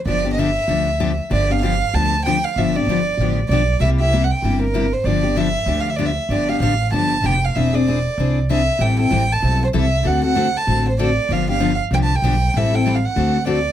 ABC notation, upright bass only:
X:1
M:4/4
L:1/8
Q:"Swing" 1/4=192
K:Gmix
V:1 name="Upright bass" clef=bass
G,,,4 D,,4 | G,,,4 D,,4 | G,,,2 G,,,2 A,,,2 B,,,2 | C,,4 G,,,4 |
G,,,4 D,,4 | G,,,2 A,,,2 G,,,2 F,,,2 | E,,,4 ^B,,,4 | A,,,2 A,,,2 B,,,2 C,,2 |
D,,4 A,,,4 | G,,,4 C,,2 B,,,2 | A,,,4 D,,4 |]